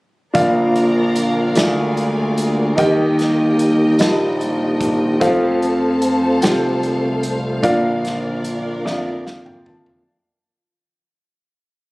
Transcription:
0.34 slap bass A#1, upright piano A#2 D4 F4 A#4 D5 F5, tonewheel organ D3 F3 A#3 F4, string section A#4 D5 F5 A#5, kick, closed hi-hat
0.76 closed hi-hat
1.16 closed hi-hat
1.55 slap bass D2, upright piano D3 F4 G#4 A#4 D5 E5, tonewheel organ G#3, string section A#4 D5 G#5, snare, closed hi-hat
1.63 upright piano F5
1.97 closed hi-hat
2.38 closed hi-hat
2.76 slap bass D#2, tonewheel organ D#3 G3 A#3 G4, upright piano D#3 D#4 G4 A#4 D#5 G5, string section D#5, kick, closed hi-hat
2.80 string section G5
3.19 snare, closed hi-hat
3.59 closed hi-hat
3.99 slap bass A#1, upright piano D#4 F4 A#4 D#5 A5, snare, closed hi-hat
4.06 upright piano G4
4.41 closed hi-hat
4.81 kick, closed hi-hat
5.20 slap bass F2, tonewheel organ F3 A3 C4 A4, upright piano C4 F4 A4 C5 F5, string section A4 C5 F5 A5, kick, closed hi-hat
5.62 closed hi-hat
6.02 closed hi-hat
6.41 slap bass C2, upright piano C4 F4 G4 C5 G5, snare, closed hi-hat
6.49 upright piano A4
6.83 closed hi-hat
7.23 closed hi-hat
7.63 slap bass A#1, upright piano A#2 D4 F4 A#4 D5 F5, tonewheel organ D3 A#3 F4, string section A#4 D5, kick, closed hi-hat
8.05 snare, closed hi-hat
8.44 closed hi-hat
8.84 slap bass F2, upright piano D4 F4 A#4 D5 E5, snare
8.92 upright piano F5
9.26 upright piano F5, snare
9.45 upright piano G5, mid tom
9.66 upright piano A5, floor tom
9.86 floor tom

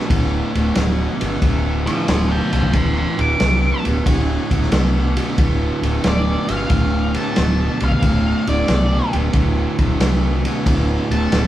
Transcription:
0.00 snare
0.10 fingered electric bass D1, distorted electric guitar D2 A2, kick, ride
0.55 fingered electric bass D1, distorted electric guitar D2 A2, ride
0.75 fingered electric bass D1, distorted electric guitar D2 B2, snare, ride
1.20 fingered electric bass G1, distorted electric guitar D2 B2, ride
1.42 fingered electric bass D1, distorted electric guitar D2 A2, kick, ride
1.86 distorted electric guitar D2 A2, lead electric guitar C5 F5, ride
2.08 fingered electric bass D1, distorted electric guitar D2 B2, lead electric guitar C5 F5, snare, ride
2.31 lead electric guitar F5 A5
2.52 fingered electric bass C2, distorted electric guitar D2 B2, lead electric guitar F5 A5, ride
2.63 kick
2.73 fingered electric bass D1, distorted electric guitar D2 A2, lead electric guitar A5 C6, kick, ride
2.98 lead electric guitar A5 C6
3.17 fingered electric bass D1, distorted electric guitar D2 A2, lead electric guitar D6, ride
3.39 fingered electric bass C2, distorted electric guitar D2 B2, snare, ride
3.84 fingered electric bass D1, distorted electric guitar D2 B2, ride
4.06 fingered electric bass D1, distorted electric guitar D2 A2, kick, ride
4.50 fingered electric bass D1, distorted electric guitar D2 A2, kick, ride
4.63 snare
4.71 fingered electric bass C2, distorted electric guitar D2 B2, snare, ride
5.17 distorted electric guitar D2 B2, ride
5.38 fingered electric bass D1, distorted electric guitar D2 A2, kick, ride
5.82 fingered electric bass D1, distorted electric guitar D2 A2, ride
6.04 fingered electric bass D1, distorted electric guitar D2 B2, lead electric guitar D5, snare, ride
6.48 fingered electric bass G1, distorted electric guitar D2 B2, lead electric guitar F5, ride
6.70 fingered electric bass D1, distorted electric guitar D2 A2, kick, ride
7.14 distorted electric guitar D2 A2, lead electric guitar A5, ride
7.36 fingered electric bass D1, distorted electric guitar D2 B2, snare, ride
7.80 fingered electric bass C2, distorted electric guitar D2 B2, lead electric guitar F5, ride
7.92 kick
8.02 fingered electric bass D1, distorted electric guitar D2 A2, kick, ride
8.47 fingered electric bass D1, distorted electric guitar D2 A2, lead electric guitar D5, ride
8.67 fingered electric bass C2, distorted electric guitar D2 B2, snare, ride
9.13 fingered electric bass D1, distorted electric guitar D2 B2, ride
9.33 fingered electric bass D1, distorted electric guitar D2 A2, kick, ride
9.79 fingered electric bass D1, distorted electric guitar D2 A2, kick, ride
10.00 fingered electric bass C2, distorted electric guitar D2 B2, snare, ride
10.45 distorted electric guitar D2 B2, ride
10.66 fingered electric bass D1, distorted electric guitar D2 A2, kick, ride
11.10 fingered electric bass D1, distorted electric guitar D2 A2, lead electric guitar A5, ride
11.32 fingered electric bass D1, distorted electric guitar D2 B2, snare, ride

